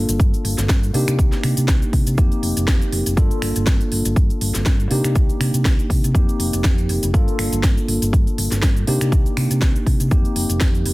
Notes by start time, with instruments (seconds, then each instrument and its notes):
Already playing: tine electric piano A#3 D4 F4 A4
0.09 fingered electric bass G1, closed hi-hat, cabasa
0.20 fingered electric bass G2, kick, closed hi-hat, cabasa
0.34 closed hi-hat, cabasa
0.45 fingered electric bass G1, open hi-hat
0.58 fingered electric bass G1, snare, closed hi-hat, cabasa
0.69 fingered electric bass G2, kick, snare, closed hi-hat, cabasa
0.83 closed hi-hat, cabasa
0.93 fingered electric bass C3, tine electric piano A#3 D4 D#4 G4, open hi-hat
1.08 fingered electric bass C3, finger snap, closed hi-hat, cabasa
1.19 fingered electric bass C2, kick, closed hi-hat, cabasa
1.32 snare, closed hi-hat, cabasa
1.44 fingered electric bass C3, finger snap, open hi-hat
1.57 fingered electric bass C3, closed hi-hat, cabasa
1.68 fingered electric bass C2, kick, snare, closed hi-hat, cabasa
1.82 closed hi-hat, cabasa
1.93 fingered electric bass C3, kick, open hi-hat
2.07 fingered electric bass C3, closed hi-hat, cabasa
2.18 fingered electric bass F2, tine electric piano A#3 C4 D#4 G4, kick, closed hi-hat, cabasa
2.32 closed hi-hat, cabasa
2.43 fingered electric bass F1, open hi-hat
2.57 fingered electric bass F1, closed hi-hat, cabasa
2.68 fingered electric bass F2, kick, snare, closed hi-hat, cabasa
2.82 closed hi-hat, cabasa
2.92 fingered electric bass F1, open hi-hat
3.06 fingered electric bass F1, closed hi-hat, cabasa
3.16 fingered electric bass G2, tine electric piano A#3 D4 F4 A4, kick, closed hi-hat, cabasa
3.31 closed hi-hat, cabasa
3.42 fingered electric bass G1, finger snap, open hi-hat
3.56 fingered electric bass G1, closed hi-hat, cabasa
3.67 fingered electric bass G2, kick, snare, closed hi-hat, cabasa
3.81 closed hi-hat, cabasa
3.92 fingered electric bass G1, open hi-hat
4.05 fingered electric bass G1, closed hi-hat, cabasa
4.16 fingered electric bass G2, kick, closed hi-hat, cabasa
4.30 closed hi-hat, cabasa
4.41 fingered electric bass G1, open hi-hat
4.54 fingered electric bass G1, snare, closed hi-hat, cabasa
4.66 fingered electric bass G2, kick, snare, closed hi-hat, cabasa
4.80 closed hi-hat, cabasa
4.90 fingered electric bass C3, tine electric piano A#3 D4 D#4 G4, open hi-hat
5.04 fingered electric bass C3, finger snap, closed hi-hat, cabasa
5.15 fingered electric bass C2, kick, closed hi-hat, cabasa
5.29 closed hi-hat, cabasa
5.40 fingered electric bass C3, finger snap, open hi-hat
5.54 fingered electric bass C3, closed hi-hat, cabasa
5.65 fingered electric bass C2, kick, snare, closed hi-hat, cabasa
5.79 closed hi-hat, cabasa
5.90 fingered electric bass C3, kick, open hi-hat
6.04 fingered electric bass C3, closed hi-hat, cabasa
6.14 fingered electric bass F2, tine electric piano A#3 C4 D#4 G4, kick, closed hi-hat, cabasa
6.29 closed hi-hat, cabasa
6.39 fingered electric bass F1, open hi-hat
6.53 fingered electric bass F1, closed hi-hat, cabasa
6.64 kick, snare, closed hi-hat, cabasa
6.78 closed hi-hat, cabasa
6.89 fingered electric bass F1, open hi-hat
7.03 fingered electric bass F1, closed hi-hat, cabasa
7.13 tine electric piano A#3 D4 F4 A4, kick, closed hi-hat, cabasa
7.28 closed hi-hat, cabasa
7.39 fingered electric bass G1, finger snap, open hi-hat
7.52 fingered electric bass G1, closed hi-hat, cabasa
7.63 fingered electric bass G2, kick, snare, closed hi-hat, cabasa
7.77 closed hi-hat, cabasa
7.88 fingered electric bass G1, open hi-hat
8.02 fingered electric bass G1, closed hi-hat, cabasa
8.13 fingered electric bass G2, kick, closed hi-hat, cabasa
8.27 closed hi-hat, cabasa
8.38 fingered electric bass G1, open hi-hat
8.51 fingered electric bass G1, snare, closed hi-hat, cabasa
8.62 fingered electric bass G2, kick, snare, closed hi-hat, cabasa
8.77 closed hi-hat, cabasa
8.87 fingered electric bass C3, tine electric piano A#3 D4 D#4 G4, open hi-hat
9.01 fingered electric bass C3, finger snap, closed hi-hat, cabasa
9.12 fingered electric bass C2, kick, closed hi-hat, cabasa
9.26 closed hi-hat, cabasa
9.37 fingered electric bass C3, finger snap, open hi-hat
9.51 fingered electric bass C3, closed hi-hat, cabasa
9.62 fingered electric bass C2, kick, snare, closed hi-hat, cabasa
9.76 closed hi-hat, cabasa
9.87 fingered electric bass C3, kick, open hi-hat
10.00 fingered electric bass C3, closed hi-hat, cabasa
10.11 tine electric piano A#3 C4 D#4 G4, kick, closed hi-hat, cabasa
10.25 closed hi-hat, cabasa
10.36 fingered electric bass F1, open hi-hat
10.49 fingered electric bass F1, closed hi-hat, cabasa
10.61 fingered electric bass F2, kick, snare, closed hi-hat, cabasa
10.75 closed hi-hat, cabasa
10.86 fingered electric bass F1, open hi-hat